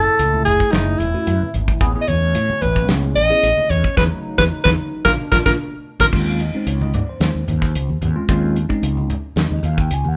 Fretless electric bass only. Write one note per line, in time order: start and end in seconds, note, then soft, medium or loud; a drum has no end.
0.19 0.45 C#2 loud
0.46 0.60 F#1 medium
0.73 0.99 F#1 loud
0.99 1.13 E1 medium
1.27 1.41 F#2 medium
1.42 muted fretless electric bass stroke soft
1.54 1.80 G#1 medium
1.81 1.94 A1 medium
2.09 2.34 E2 medium
2.35 2.48 A2 medium
2.50 muted fretless electric bass stroke soft
2.62 2.89 A1 medium
2.89 3.14 C#2 loud
3.17 3.30 A1 loud
3.43 3.56 A1 medium
3.57 muted fretless electric bass stroke soft
3.70 3.83 E2 medium
3.97 4.08 E2 loud
4.38 4.48 E2 medium
4.65 4.75 E2 medium
5.06 5.16 A#1 loud
5.32 5.42 A#1 loud
5.46 5.56 A#1 medium
6.00 6.10 A#1 loud
6.13 6.51 D#2 medium
6.55 muted fretless electric bass stroke soft
6.67 6.92 C#2 medium
7.20 7.34 D#2 loud
7.35 7.47 D#2 medium
7.49 7.74 D#2 medium
7.75 7.88 C#2 medium
7.89 8.01 D#2 medium
8.02 8.15 D#2 medium
8.29 8.67 D#2 medium
8.70 muted fretless electric bass stroke soft
8.83 9.08 C#2 medium
9.36 9.50 D#2 medium
9.51 9.62 D#2 medium
9.63 9.89 D#2 loud
9.91 10.04 C#2 medium
10.05 10.17 D#2 medium